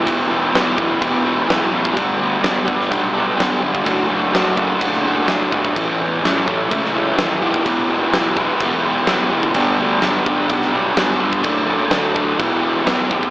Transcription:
<<
  \new Staff \with { instrumentName = "Distorted electric guitar" } { \time 4/4 \key e \dorian \tempo 4 = 126 <e b e' g'>8 <b e' g'>8 <e b e' g'>8 <e b e' g'>8 <e b e' g'>8 <b e' g'>8 <e b e' g'>8 <b e' g'>8 | <g b d' g'>8 <b d' g'>8 <g b d' g'>8 <g b d' g'>8 <g b d' g'>8 <b d' g'>8 <g b d' g'>8 <b d' g'>8 | <fis a d' fis'>8 <a d' fis'>8 <fis a d' fis'>8 <fis a d' fis'>8 <fis a d' fis'>8 <a d' fis'>8 <fis a d' fis'>8 <a d' fis'>8 | <a, e a cis' e'>8 <a cis' e'>8 <e a cis' e'>8 <a, e a cis' e'>8 <e a cis' e'>8 <a cis' e'>8 <a, e a cis' e'>8 <e b e' g'>8 |
<e b e' g'>8 <b e' g'>8 <e b e' g'>8 <e b e' g'>8 <e b e' g'>8 <b e' g'>8 <e b e' g'>8 <b e' g'>8 | <g b d' g'>8 <b d' g'>8 <g b d' g'>8 <g b d' g'>8 <g b d' g'>8 <b d' g'>8 <g b d' g'>8 <b d' g'>8 | <fis a d' a'>8 <a d' a'>8 <fis a d' a'>8 <fis a d' a'>8 <e b e' g'>8 <b e' g'>8 <e b e' g'>8 <b e' g'>8 | }
  \new Staff \with { instrumentName = "Fingered electric bass" } { \clef bass \time 4/4 \key e \dorian e,,8 e,,8 e,,4 e,,4 e,,8 a,,8 | g,,8 d,8 g,,8 g,,8 b,,4 g,,8 g,,8 | fis,,8 fis,,8 fis,,4 fis,,4 fis,,8 g,,8 | a,,8 e,8 a,,8 a,,8 cis,4 dis,8 e,,8 |
e,,8 e,,8 e,,4 e,,4 e,,8 fis,,8 | g,,8 d,8 g,,8 g,,8 b,,4 g,,8 g,,8 | fis,,8 fis,,8 d,4 e,,4 e,,8 gis,,8 | }
  \new DrumStaff \with { instrumentName = "Drums" } \drummode { \time 4/4 <cymc bd>4 <cymc sn>8 bd8 <cymc bd>4 <cymc sn>8. bd16 | <cymc bd>4 <cymc sn>8 bd16 sn16 <cymc bd>4 <cymc sn>8. bd16 | <cymc bd>4 <cymc sn>8 bd8 <cymc bd>16 sn8. <cymc sn>8 bd16 bd16 | <cymc bd>4 <cymc sn>8 bd8 <cymc bd>16 sn8. <cymc sn>8. bd16 |
<cymc bd>4 <cymc sn>8 bd8 <cymc bd>4 <cymc sn>8. bd16 | <cymc bd>4 <cymc sn>8 bd8 <cymc bd>16 sn8. <cymc sn>8. bd16 | <cymc bd>4 <cymc sn>8 bd8 <cymc bd>4 <cymc sn>8 bd16 bd16 | }
>>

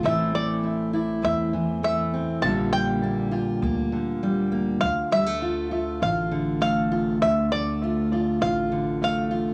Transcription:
<<
  \new Staff \with { instrumentName = "Five-string banjo" } { \time 4/4 \key d \minor \tempo 4 = 100 e''8 d''4. e''4 e''4 | a''8 g''4. r2 | f''8 e''4. f''4 f''4 | e''8 d''4. f''4 f''4 | }
  \new Staff \with { instrumentName = "Steel-string acoustic guitar" } { \time 4/4 \key d \minor << { <e a c' e'>8 a8 c'8 e'8 c'4 a8 c'8 | <d g bes f'>8 g8 bes8 f'8 bes4 g8 bes8 | r8 g16 a16 f'8 f'8 f'4 a8 f'8 | r8 a8 f'8 f'8 f'4 a8 f'8 | } \\ { a,2~ a,8 e4. | bes,2~ bes,8 d4. | d,2~ d,8 d4. | d,2~ d,8 d4. | } >> }
  \new Staff \with { instrumentName = "Upright bass" } { \clef bass \time 4/4 \key d \minor a,,2 e,2 | bes,,2 d,2 | d,2 a,,2 | d,2 a,,2 | }
>>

